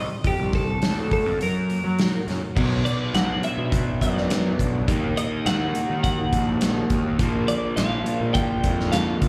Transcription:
Already playing: steel-string acoustic guitar D#3 G3 C4 G4, clean electric guitar D#5
0.24 picked electric bass F2, steel-string acoustic guitar F2, clean electric guitar G4, kick, open hi-hat
0.39 picked electric bass C2
0.53 clean electric guitar A4, kick, open hi-hat
0.82 picked electric bass D2, steel-string acoustic guitar C4, snare, open hi-hat
1.11 steel-string acoustic guitar F3, clean electric guitar A4, kick, open hi-hat
1.26 picked electric bass F2
1.40 picked electric bass F#2, steel-string acoustic guitar F#2, clean electric guitar A#4, open hi-hat
1.70 steel-string acoustic guitar A#3, open hi-hat
1.84 picked electric bass F#3
1.99 steel-string acoustic guitar F#4, snare, open hi-hat
2.27 picked electric bass F#2, steel-string acoustic guitar C#4, snare, open hi-hat
2.56 picked electric bass B1, overdriven electric guitar B2 F#3 B3, steel-string acoustic guitar B2, kick, crash
2.85 steel-string acoustic guitar F#3, clean electric guitar D5, closed hi-hat
3.14 picked electric bass B1, steel-string acoustic guitar F#3, clean electric guitar F#5, snare, closed hi-hat
3.43 steel-string acoustic guitar D4, clean electric guitar E5, closed hi-hat
3.58 picked electric bass B2
3.72 steel-string acoustic guitar F#4, kick, closed hi-hat
4.01 picked electric bass F#2, steel-string acoustic guitar B3, clean electric guitar D5, kick, closed hi-hat
4.17 snare
4.30 steel-string acoustic guitar F#3, snare, closed hi-hat
4.59 picked electric bass B1, steel-string acoustic guitar D4, kick, closed hi-hat
4.87 picked electric bass D#2, overdriven electric guitar D#3 A#3 D#4, steel-string acoustic guitar D#3, kick, closed hi-hat
5.17 steel-string acoustic guitar A#3, clean electric guitar D#5, closed hi-hat
5.46 picked electric bass D#2, clean electric guitar F#5, snare, closed hi-hat
5.75 steel-string acoustic guitar D#4, closed hi-hat
5.90 picked electric bass D#3
6.03 steel-string acoustic guitar F#4, clean electric guitar F#5, kick, closed hi-hat
6.32 picked electric bass A#1, steel-string acoustic guitar A#3, kick, closed hi-hat
6.61 steel-string acoustic guitar D#3, snare, closed hi-hat
6.90 picked electric bass D#2, steel-string acoustic guitar D#4, kick, closed hi-hat
7.19 picked electric bass A#1, overdriven electric guitar A#2 F3 A#3, steel-string acoustic guitar A#2, kick, closed hi-hat
7.48 steel-string acoustic guitar D3, clean electric guitar D5, closed hi-hat
7.76 picked electric bass A#1, steel-string acoustic guitar D3, clean electric guitar F5, snare, closed hi-hat
8.06 steel-string acoustic guitar D4, closed hi-hat
8.21 picked electric bass A#2, clean electric guitar D#5
8.34 steel-string acoustic guitar F4, clean electric guitar G5, kick, closed hi-hat
8.64 picked electric bass F2, steel-string acoustic guitar A#3, kick, closed hi-hat
8.80 snare
8.92 steel-string acoustic guitar D3, clean electric guitar F5, snare, closed hi-hat
9.22 picked electric bass C#2, steel-string acoustic guitar D4, kick, closed hi-hat

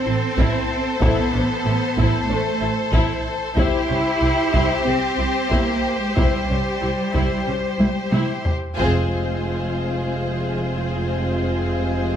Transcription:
Already playing: cello section C4, violin section A4 C5
0.05 double bass section A1, viola section E4
0.38 double bass section A1, viola section E4, taiko
1.02 double bass section A1, cello section B3, viola section E4, french horn section A4 C5, taiko
1.34 double bass section A1, viola section D4
1.65 double bass section A1, viola section E4
1.97 double bass section A1, viola section E4, taiko
2.29 double bass section A1, cello section A3, viola section D4, french horn section A4 C5
2.61 double bass section A1, viola section E4
2.92 double bass section A1, viola section E4, taiko
3.56 double bass section C2, viola section E4, cello section E4, french horn section G4 C5, violin section G4 C5, taiko
3.89 double bass section C2, viola section C#4
4.21 double bass section C2, viola section E4
4.53 double bass section C2, viola section E4, taiko
4.85 double bass section C2, viola section C4, cello section C4, french horn section G4 C5
5.18 double bass section C2, viola section E4
5.50 double bass section C2, cello section A#3, viola section E4, taiko
6.01 cello section G#3
6.15 double bass section C2, cello section G3, viola section E4, french horn section G4 C5, taiko
6.48 double bass section C2, viola section C#4
6.81 double bass section C2, viola section E4
7.13 double bass section C2, viola section E4, taiko
7.47 double bass section C2, viola section C#4, french horn section G4 C5
7.79 double bass section C2, viola section E4, taiko high
8.11 double bass section C2, viola section E4, taiko high
8.45 taiko low
8.76 double bass section F1, cello section F2, trombone section C3 G#3, string section C4 F4 G#4 C5, french horn section C4 F4, viola section F4, violin section G#4 C5, taiko

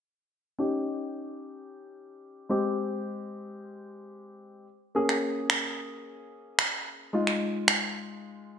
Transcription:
0.59 grand piano C#4 D#4 G4
2.49 grand piano G#3 C4 G4
4.95 grand piano A#3 C#4 G#4
5.09 finger snap
5.50 finger snap
6.59 finger snap
7.13 grand piano G#3 D#4 F4
7.27 finger snap
7.68 finger snap

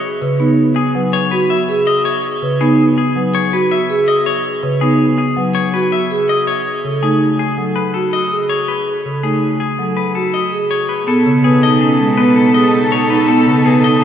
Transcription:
0.21 marimba C#3, vibraphone B4
0.40 marimba B3, vibraphone D#4
0.76 clean electric guitar G#4
0.95 marimba F#3, vibraphone B4
1.13 clean electric guitar C#5
1.31 vibraphone F#4, clean electric guitar B4
1.50 clean electric guitar E5
1.69 vibraphone G#4
1.87 clean electric guitar D#5
2.05 clean electric guitar C#5
2.42 marimba C#3, vibraphone B4
2.61 marimba B3, vibraphone D#4, clean electric guitar G#4
2.98 clean electric guitar G#4
3.16 marimba F#3, vibraphone B4
3.35 clean electric guitar C#5
3.53 vibraphone F#4, clean electric guitar B4
3.71 clean electric guitar E5
3.90 vibraphone G#4
4.08 clean electric guitar D#5
4.26 clean electric guitar C#5
4.63 marimba C#3, vibraphone B4
4.81 marimba B3, vibraphone D#4, clean electric guitar G#4
5.18 clean electric guitar G#4
5.37 marimba F#3, vibraphone B4
5.55 clean electric guitar C#5
5.74 vibraphone F#4, clean electric guitar B4
5.92 clean electric guitar E5
6.11 vibraphone G#4
6.29 clean electric guitar D#5
6.47 clean electric guitar C#5
6.84 marimba C#3, vibraphone A4
7.03 marimba A3, vibraphone D#4, clean electric guitar G#4
7.39 clean electric guitar G#4
7.57 marimba F#3, vibraphone A4
7.76 clean electric guitar B4
7.94 vibraphone F#4, clean electric guitar A4
8.13 clean electric guitar D#5
8.31 vibraphone G#4
8.49 clean electric guitar C#5
8.68 clean electric guitar B4
9.05 marimba C#3
9.23 marimba A3, vibraphone D#4, clean electric guitar G#4
9.60 clean electric guitar G#4
9.79 marimba F#3, vibraphone A4
9.97 clean electric guitar B4
10.15 vibraphone F#4, clean electric guitar A4
10.34 clean electric guitar D#5
10.52 vibraphone G#4
10.71 clean electric guitar C#5
10.89 clean electric guitar B4
11.07 cello B2, marimba B3, string section D#4 A4, soprano saxophone A4, vibraphone A4, clean electric guitar A4
11.25 marimba C#3
11.44 marimba B3, clean electric guitar G#4, vibraphone B4
11.63 vibraphone D#4, clean electric guitar D#5
11.81 vibraphone C#4, clean electric guitar G#4
12.00 marimba G#3
12.17 marimba B3, clean electric guitar B4, vibraphone B4
12.36 clean electric guitar A4
12.54 vibraphone G#4, clean electric guitar D#5
12.91 vibraphone A4, clean electric guitar C#5
13.10 vibraphone D#4, clean electric guitar B4
13.28 marimba B3, vibraphone A4, clean electric guitar A4
13.46 marimba C#3
13.65 marimba B3, clean electric guitar G#4, vibraphone B4
13.84 vibraphone D#4, clean electric guitar D#5

